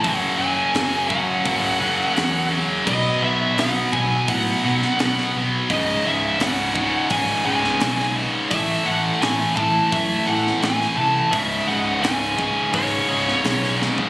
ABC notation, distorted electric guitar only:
X:1
M:4/4
L:1/8
Q:1/4=85
K:C#m
V:1 name="Distorted electric guitar" clef=bass
[F,,C,F,] [F,,C,F,] [F,,C,F,] [F,,C,F,] [F,,C,F,] [F,,C,F,] [F,,C,F,] [F,,C,F,] | [B,,F,B,] [B,,F,B,] [B,,F,B,] [B,,F,B,] [B,,F,B,] [B,,F,B,] [B,,F,B,] [B,,F,B,] | [C,,G,,C,] [C,,G,,C,] [C,,G,,C,] [C,,G,,C,] [C,,G,,C,] [C,,G,,C,] [C,,G,,C,] [C,,G,,C,] | [A,,E,A,] [A,,E,A,] [A,,E,A,] [A,,E,A,] [A,,E,A,] [A,,E,A,] [A,,E,A,] [A,,E,A,] |
[C,,G,,C,] [C,,G,,C,] [C,,G,,C,] [C,,G,,C,] [C,,G,,C,] [C,,G,,C,] [C,,G,,C,] [C,,G,,C,] |]